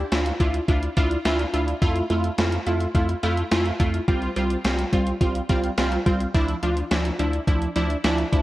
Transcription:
0.12 D2 D4 E4 F4, snare, closed hi-hat
0.26 closed hi-hat
0.40 D2 D4 E4 F4, kick, closed hi-hat
0.54 closed hi-hat
0.68 D2 D4 E4 F4, kick, closed hi-hat
0.83 closed hi-hat
0.97 D2 D4 E4 F4, kick, closed hi-hat
1.11 closed hi-hat
1.25 D2 D4 E4 F4, snare, closed hi-hat
1.39 closed hi-hat
1.53 D2 D4 E4 F4, closed hi-hat
1.68 closed hi-hat
1.82 F2 A3 E4 F4, kick, closed hi-hat
1.96 closed hi-hat
2.10 F2 A3 E4 F4, closed hi-hat
2.24 closed hi-hat
2.38 F2 A3 E4 F4, snare, closed hi-hat
2.52 closed hi-hat
2.66 F2 A3 E4 F4, closed hi-hat
2.80 closed hi-hat
2.95 F2 A3 E4 F4, kick, closed hi-hat
3.09 closed hi-hat
3.23 F2 A3 E4 F4, closed hi-hat
3.37 closed hi-hat
3.51 F2 A3 E4 F4, snare, closed hi-hat
3.66 closed hi-hat
3.80 F2 A3 E4 F4, kick, closed hi-hat
3.94 closed hi-hat
4.08 C2 G3 C4 F4, kick, closed hi-hat
4.22 closed hi-hat
4.36 C2 G3 C4 F4, closed hi-hat
4.50 closed hi-hat
4.65 C2 G3 C4 F4, snare, closed hi-hat
4.79 closed hi-hat
4.93 C2 G3 C4 F4, kick, closed hi-hat
5.07 closed hi-hat
5.21 C2 G3 C4 F4, kick, closed hi-hat
5.35 closed hi-hat
5.49 C2 G3 C4 F4, kick, closed hi-hat
5.64 closed hi-hat
5.78 C2 G3 C4 F4, snare, closed hi-hat
5.92 closed hi-hat
6.06 C2 G3 C4 F4, kick, closed hi-hat
6.20 closed hi-hat
6.34 D2 F3 D4 E4, kick, closed hi-hat
6.48 closed hi-hat
6.63 D2 F3 D4 F4, closed hi-hat
6.77 closed hi-hat
6.91 D2 F3 D4 E4, snare, closed hi-hat
7.05 closed hi-hat
7.19 D2 F3 D4 E4, closed hi-hat
7.33 closed hi-hat
7.47 D2 F3 D4 E4, kick, closed hi-hat
7.62 closed hi-hat
7.76 D2 F3 D4 E4, closed hi-hat
7.90 closed hi-hat
8.04 D2 F3 D4 E4, snare, closed hi-hat
8.18 closed hi-hat
8.33 D2 F3 D4 E4, kick, closed hi-hat

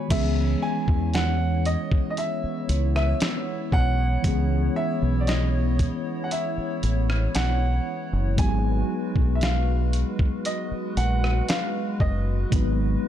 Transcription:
Already playing: D#3 G#3 B3 F#4 C#5
0.08 C#2 D#3 G#3 B3 E4 C#5 E5, kick, closed hi-hat, crash
0.12 E3 C#4 G#4
0.62 G#5
0.88 E2, kick
1.14 F#5, snare, closed hi-hat
1.65 D#5, closed hi-hat
1.92 kick
2.10 D#5
2.17 E5, closed hi-hat
2.44 muted fingered electric bass stroke
2.69 C#2, closed hi-hat
2.96 E5, cross-stick
3.20 snare, closed hi-hat
3.72 B1 F#5, kick
4.22 C#2 E3 G#3 B3 C#4, kick, closed hi-hat
4.28 G#4
4.76 E5
5.02 B1
5.21 D5
5.27 D#5, snare, closed hi-hat
5.79 kick, closed hi-hat
6.24 F#5
6.31 E5, closed hi-hat
6.58 muted fingered electric bass stroke
6.83 A1, closed hi-hat
7.10 cross-stick
7.35 B1 F#5, snare, closed hi-hat
8.13 F#1
8.36 G#1 F#3 G#3 B3 F#4 B4 G#5, kick, closed hi-hat
8.40 D#4 G4
8.48 G#4
9.16 B1, kick
9.35 E5
9.41 F5, snare, closed hi-hat
9.93 closed hi-hat
10.19 kick
10.45 D#5, closed hi-hat
10.71 muted fingered electric bass stroke
10.97 A#1 F#5, closed hi-hat
11.24 cross-stick
11.49 F5, snare, closed hi-hat
12.00 F#1 D#5, kick
12.50 G#1 F#3 G#3 B3, kick, closed hi-hat
12.54 D#4 B4

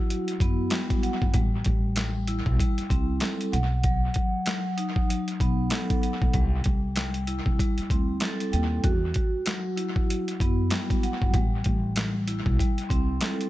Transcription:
Already playing: F#3 E4 F#4
0.10 closed hi-hat
0.28 closed hi-hat
0.40 F#2 B3, kick, closed hi-hat
0.70 G3, snare, clap, closed hi-hat
0.90 kick, closed hi-hat
1.03 F#5, closed hi-hat
1.22 G1, kick
1.34 A1 G3, kick, closed hi-hat
1.65 A1, kick, closed hi-hat
1.96 G3, snare, clap, closed hi-hat
2.27 E4, closed hi-hat
2.46 B1, kick
2.60 G3, kick, closed hi-hat
2.78 muted upright bass stroke, closed hi-hat
2.89 C2 C4, kick, closed hi-hat
3.20 A4, snare, clap, closed hi-hat
3.41 closed hi-hat
3.52 B1 F#5, closed hi-hat
3.84 F#3, kick, closed hi-hat
4.14 kick, closed hi-hat
4.46 F#3, snare, clap, closed hi-hat
4.77 D#4, closed hi-hat
4.96 kick
5.09 F#3, closed hi-hat
5.28 closed hi-hat
5.40 B1 B3, kick, closed hi-hat
5.70 A4, snare, clap, closed hi-hat
5.90 kick, closed hi-hat
6.02 F#5, closed hi-hat
6.22 B1, kick
6.33 C2 G3, kick, closed hi-hat
6.64 C2, kick, closed hi-hat
6.96 G3, snare, clap, closed hi-hat
7.14 closed hi-hat
7.27 E4, closed hi-hat
7.46 C2, kick
7.59 G3, kick, closed hi-hat
7.78 muted upright bass stroke, closed hi-hat
7.90 D2 C4, kick, closed hi-hat
8.20 A4, snare, clap, closed hi-hat
8.40 closed hi-hat
8.52 D#2 G5, closed hi-hat
8.84 E2 F#4, kick, closed hi-hat
9.14 kick, closed hi-hat
9.46 F#3, snare, clap, closed hi-hat
9.76 E4, closed hi-hat
9.96 kick
10.10 closed hi-hat
10.28 closed hi-hat
10.40 F#2 B3, kick, closed hi-hat
10.70 G3, snare, clap, closed hi-hat
10.90 kick, closed hi-hat
11.03 F#5, closed hi-hat
11.22 G1, kick
11.34 A1 G3, kick, closed hi-hat
11.64 A1, kick, closed hi-hat
11.96 G3, snare, clap, closed hi-hat
12.28 E4, closed hi-hat
12.46 B1, kick
12.59 G3, kick, closed hi-hat
12.78 muted upright bass stroke, closed hi-hat
12.89 C2 C4, kick, closed hi-hat
13.21 A4, snare, clap, closed hi-hat
13.41 closed hi-hat

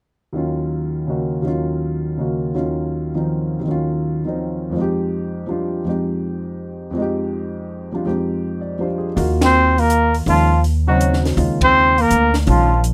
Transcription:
0.33 D#2 D#3 F#3 C#4
0.37 F4
1.07 C#3 A#3 D#4 F#4
1.42 D#2 D#3 F#3 C#4
1.48 F4
2.18 C#3 A#3 D#4 F#4
2.55 D#2 D#3 F#3 C#4 F4
3.15 D#3 F3 C4 D#4
3.60 D#2 D#3
3.66 F#3 C#4
3.71 F4
4.25 D#3 F3 C4 D#4
4.70 F2 F3
4.75 G#3 D#4
4.81 G4
5.47 F3 G3 D4 F4
5.84 F2 F3 G#3 D#4
5.89 G4
6.91 F2 F3
6.96 G#3 D#4
7.02 G4
7.92 F3 G3 D4 F4
8.06 F2 F3 G#3 D#4 G4
8.61 D5
8.79 F3 G3 D4 F4 C5
8.98 G#4
9.16 D#2 A#3 D#4 F4 F#4, open hi-hat
9.41 C4 C5, snare, ride
9.78 A#3 A#4, open hi-hat
9.90 closed hi-hat
10.14 open hi-hat
10.26 D#2 D#3 F3 G#3 C#4 F4, open hi-hat
10.64 open hi-hat
10.87 C#3 F#3 C4 D#4 F#4
11.01 closed hi-hat
11.13 snare
11.25 snare, open hi-hat
11.37 D#2 C#3 D#3 G#3 F4, open hi-hat
11.61 C4 C5, kick, ride
11.98 A#3 A#4, open hi-hat
12.10 D2, closed hi-hat
12.34 snare, open hi-hat
12.47 A#1 D#3 F3 G#3 C#4 F4, open hi-hat
12.84 closed hi-hat

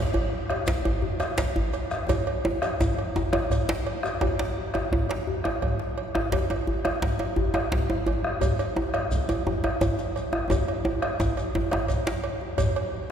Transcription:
0.14 cowbell, djembe bass
0.50 bombo rim, cowbell, djembe slap, djembe tone
0.66 bombo rim, bombo low, djembe slap, shekere
0.85 cowbell, djembe bass
1.02 djembe bass
1.20 bombo rim, cowbell, djembe slap, djembe tone, shekere
1.37 bombo low, cowbell, djembe slap, shekere
1.56 djembe slap, djembe bass
1.73 cowbell, shekere
1.91 bombo rim, djembe tone, shekere
2.08 bombo low, cowbell, djembe tone, djembe bass, shekere
2.27 cowbell
2.45 djembe slap, djembe tone
2.62 bombo rim, cowbell, djembe slap, djembe tone, shekere
2.79 bombo low, djembe tone, shekere
2.97 bombo rim, cowbell
3.16 djembe slap, djembe tone, djembe bass, shekere
3.33 bombo rim, cowbell, djembe slap, djembe tone
3.50 bombo rim, bombo low, cowbell, djembe slap, shekere
3.68 bombo rim, djembe slap
3.87 cowbell, djembe slap
4.03 bombo rim, djembe slap, djembe tone, shekere
4.21 bombo low, cowbell, djembe tone, djembe bass
4.39 cowbell, djembe slap
4.74 bombo rim, cowbell, djembe slap, djembe tone
4.91 bombo low, djembe slap, djembe tone
5.09 bombo rim, cowbell, djembe slap
5.27 djembe bass
5.44 bombo rim, cowbell, djembe slap, djembe tone
5.62 bombo rim, bombo low, cowbell
5.79 djembe slap
5.98 cowbell
6.15 bombo rim, djembe slap, djembe tone
6.32 bombo low, cowbell, djembe slap, djembe bass
6.50 cowbell, djembe tone
6.67 djembe bass
6.85 bombo rim, cowbell, djembe slap, djembe tone
7.02 bombo low, djembe slap
7.19 bombo rim, cowbell, djembe tone
7.36 djembe bass
7.54 bombo rim, cowbell, djembe slap, djembe tone
7.72 bombo rim, bombo low, djembe slap
7.90 djembe slap, djembe tone
8.06 cowbell, djembe bass
8.24 bombo rim, djembe slap, djembe tone
8.41 bombo low, cowbell, djembe bass, shekere
8.59 cowbell, shekere
8.76 djembe tone
8.94 bombo rim, cowbell, djembe slap, djembe tone
9.11 bombo low, djembe slap, shekere
9.29 bombo rim, cowbell, djembe tone, shekere
9.47 djembe tone, djembe bass
9.64 bombo rim, cowbell, djembe slap, djembe tone
9.81 bombo rim, bombo low, cowbell, djembe tone, shekere
9.98 djembe slap, shekere
10.16 cowbell, shekere
10.33 bombo rim, djembe slap, djembe tone
10.50 bombo low, cowbell, djembe tone, djembe bass, shekere
10.68 cowbell
10.85 djembe tone
11.02 bombo rim, cowbell, djembe slap, djembe tone
11.20 bombo rim, bombo low, djembe slap, djembe tone, shekere
11.37 cowbell, shekere
11.55 djembe slap, djembe tone, djembe bass
11.71 bombo rim, cowbell, djembe tone
11.88 bombo low, cowbell, shekere
12.07 djembe slap, shekere
12.24 cowbell
12.41 djembe slap, djembe tone
12.58 bombo low, cowbell, djembe slap, djembe bass, shekere
12.76 cowbell

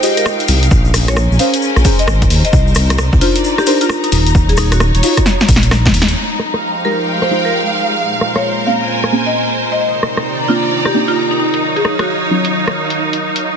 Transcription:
Already playing: G#3 D#4 F5 G5
0.03 F4 G4 G#4 C5 D#5, open hi-hat, maracas
0.17 A#4, closed hi-hat, maracas
0.26 cross-stick, maracas
0.40 closed hi-hat, maracas
0.48 C2, open hi-hat, maracas
0.63 closed hi-hat, maracas
0.71 A#1 C#4, kick, maracas
0.85 maracas
0.94 A#1, cross-stick, open hi-hat, maracas
1.04 A#4 C#5 G#5, cross-stick, closed hi-hat, maracas
1.16 cross-stick, maracas
1.31 A#1, maracas
1.39 C#4 G#4 A#4 C5 F5, open hi-hat, maracas
1.51 C5, closed hi-hat, maracas
1.62 maracas
1.76 A#1, cross-stick, maracas
1.85 C#4 G#4 A#4 C5, kick, open hi-hat, maracas
1.99 D#5, closed hi-hat, maracas
2.07 G#1, cross-stick, maracas
2.22 kick, closed hi-hat, maracas
2.30 D#2, open hi-hat, maracas
2.44 D#5, closed hi-hat, maracas
2.53 C2 D#4 D#5, kick, maracas
2.67 maracas
2.75 C2, cross-stick, open hi-hat, maracas
2.90 cross-stick, closed hi-hat, maracas
2.98 D5, cross-stick, maracas
3.13 C2, kick, maracas
3.21 D4 D#4 F4 A#4 C5, open hi-hat, maracas
3.26 A#5
3.35 closed hi-hat, maracas
3.44 maracas
3.58 G4, cross-stick, maracas
3.66 D4 D#4 G4 A#4 C5, open hi-hat, maracas
3.81 F4, closed hi-hat, maracas
3.90 cross-stick, maracas
4.04 D#4, closed hi-hat, maracas
4.12 D#1 D#4, open hi-hat, maracas
4.27 closed hi-hat, maracas
4.35 D#1 C#5, kick, maracas
4.49 G#4, closed hi-hat, maracas
4.57 D#1 D#4, cross-stick, open hi-hat, maracas
4.72 F#4, cross-stick, closed hi-hat, maracas
4.80 cross-stick, maracas
4.95 D#1, closed hi-hat, maracas
5.03 D#4 F4 F#4 C#5, open hi-hat, maracas
5.17 kick, cross-stick, closed hi-hat, maracas
5.26 snare, maracas
5.40 snare, maracas
5.48 A#1, kick, open hi-hat, maracas
5.56 snare
5.63 closed hi-hat, maracas
5.71 cross-stick, snare, maracas
5.86 kick, snare, closed hi-hat, maracas
5.94 D#2, open hi-hat, maracas
6.02 snare
6.08 closed hi-hat, maracas
6.17 F3 G#3 D#4 G4 C5
6.31 G#3, closed hi-hat
6.39 cross-stick
6.53 F5, cross-stick
6.85 G#3 D#4 F4 G4 A#4
6.99 G5, closed hi-hat
7.22 C5, cross-stick
7.31 G#3 D#4 F4 G4 C5
7.45 A#4
7.67 closed hi-hat
7.90 closed hi-hat
7.99 A#2 F4 C5
8.13 A#4, closed hi-hat
8.21 cross-stick
8.25 C5
8.36 C#5, cross-stick, closed hi-hat
8.67 A#3 C4 C#4 G#4 F5
8.81 G#5, closed hi-hat
9.04 cross-stick
9.12 A#3 C4 C#4 G#4
9.26 D#5, closed hi-hat
9.49 closed hi-hat
9.72 D#5, closed hi-hat
9.80 C3 D#3 D#4 G4 A#4 D5 D#5
9.95 A#5, closed hi-hat
10.03 cross-stick
10.17 cross-stick, closed hi-hat
10.29 D5
10.48 A#3 C4 D4 D#4 F4
10.63 closed hi-hat
10.85 G4, cross-stick
10.94 A#3 C4 D4 D#4 G4
11.08 F4, closed hi-hat
11.31 D#4, closed hi-hat
11.39 D#3 F#3 D#4 C#5 F5
11.54 C#5, closed hi-hat
11.76 G#4, closed hi-hat
11.85 D#4, cross-stick
11.99 F#4, cross-stick, closed hi-hat
12.31 F#3 C#4 D#4 F4
12.45 closed hi-hat
12.68 cross-stick
12.90 closed hi-hat
13.13 closed hi-hat
13.36 closed hi-hat
13.44 F3 G#3 D#4 G4 C5

